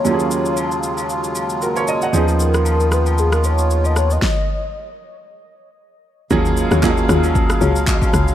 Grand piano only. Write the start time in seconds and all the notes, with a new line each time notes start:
0.04 D#2 F#3 A#3 C#4 F4 G4
0.14 G#4
1.62 F#4 A#4
1.76 A#4 C#5
1.88 D#5
2.03 D#5 F#5
2.13 F3 B3 C#4 D#4 G#4
6.31 F#3 A#3 C#4 F4 G#4
6.83 F#3 A#3 C#4 F4 G#4